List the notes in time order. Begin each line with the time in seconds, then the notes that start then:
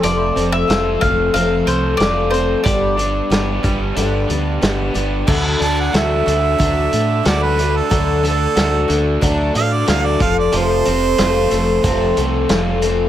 0.03 F1 F2 C3 F3 A3 C4 A4 D5, closed hi-hat
0.36 F1 F3 A3 C4 A4, closed hi-hat
0.52 E5
0.68 F1 F3 A3 C4 F4 A4, snare, closed hi-hat
1.01 F1 F3 A3 C4 A4 F5, kick, closed hi-hat
1.34 F1 F2 C3 F3 A3 C4 A4 F5, closed hi-hat
1.66 C2 F3 A3 C4 A4 C5, closed hi-hat
1.97 F1 F3 A3 F4 D5, snare, closed hi-hat
2.02 C4 A4
2.31 A3 C4 A4 C5, closed hi-hat
2.35 F3
2.64 G1 G2 D3 G3 B3 D4 G4 D5, kick, closed hi-hat
2.98 G3 B3 D4 G4, closed hi-hat
3.30 G1 G3 B3 D4 G4, snare, closed hi-hat
3.63 G1 G3 B3 D4 G4, kick, closed hi-hat
3.96 G1 G2 D3 G3 B3 D4 G4, closed hi-hat
4.28 D2 G3 B3 D4 G4, closed hi-hat
4.32 G3
4.62 G1 G3 B3 D4 G4, snare, closed hi-hat
4.94 G1 G3 B3 D4 G4, closed hi-hat
5.27 D2 D3 F#3 A3 D4 F#4, kick, crash
5.60 D2 A3 D4 F#4 A5, closed hi-hat
5.80 F#5
5.93 D2 F#3 A3 D4 F#4 E5, snare, closed hi-hat
6.26 D2 D3 A3 D4 F#4, closed hi-hat
6.58 D2 D3 F#3 A3 D4 F#4, kick, closed hi-hat
6.92 A2 D3 A3 D4 F#4, closed hi-hat
7.23 D2 F#3 A3 D4 F#4 D5, snare, closed hi-hat
7.43 B4
7.58 A3 D4 F#4, closed hi-hat
7.77 A4
7.89 D2 D3 F#3 A3 D4 F#4, kick, closed hi-hat
8.23 A3 D4 F#4, closed hi-hat
8.28 A4
8.55 D2 F#3 A3 D4 F#4, snare, closed hi-hat
8.88 D2 D3 A3 D4 F#4, closed hi-hat
9.21 D2 D3 F#3 A3 D4 F#4, kick, closed hi-hat
9.54 A2 D3 A3 D4 F#4 F5, closed hi-hat
9.74 D5
9.86 D2 F#3 A3 D4 F#4 F5, snare, closed hi-hat
10.06 D5
10.20 F1 F3 A3 C4 A4 F5, kick, closed hi-hat
10.39 D5
10.52 F1 F2 C3 F3 A3 C4 A4, closed hi-hat
10.57 C5
10.84 F1 F3 A3 C4 A4, closed hi-hat
11.18 F1 F3 A3 C4 F4 A4, snare, closed hi-hat
11.50 F1 F3 A3 C4 A4, closed hi-hat
11.83 F1 F2 C3 F3 A3 C4 A4, kick, closed hi-hat
12.17 C2 A3 C4 A4, closed hi-hat
12.21 F3
12.49 F1 F3 A3 C4 F4, snare, closed hi-hat
12.54 A4
12.82 F3 A3 C4 A4, closed hi-hat